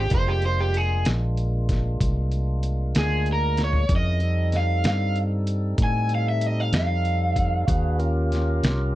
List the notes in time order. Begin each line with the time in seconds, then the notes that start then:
Already playing: G4
0.09 F1 G#3 A#3 D4 F4, kick, closed hi-hat
0.14 C5
0.28 G4
0.42 C5, closed hi-hat
0.60 G4
0.74 G#4, closed hi-hat
1.05 A#1, snare, closed hi-hat
1.37 closed hi-hat
1.69 kick, snare, closed hi-hat
2.01 C2, kick, closed hi-hat
2.32 closed hi-hat
2.63 closed hi-hat
2.95 D2 G#4, snare, closed hi-hat
3.26 closed hi-hat
3.33 A#4
3.57 snare, closed hi-hat
3.64 C#5
3.73 floor tom
3.89 F2 C#4 E4 G#4 A#4, kick, closed hi-hat
3.96 D#5
4.20 G3 C4 D#4 A4, closed hi-hat
4.52 snare, closed hi-hat
4.57 F5
4.84 G2 F5, snare, closed hi-hat
5.16 closed hi-hat
5.47 closed hi-hat
5.78 A2, kick, closed hi-hat
5.83 G#5
6.09 closed hi-hat
6.15 F5
6.29 E5
6.41 closed hi-hat
6.46 D#5
6.60 F5
6.72 F2 F5, snare, closed hi-hat
7.05 closed hi-hat
7.36 kick, closed hi-hat
7.67 D#2 D4 F#4 G#4 B4, kick, closed hi-hat
7.99 C#4 F4 G4 A#4, closed hi-hat
8.32 snare, closed hi-hat
8.63 C2, snare, closed hi-hat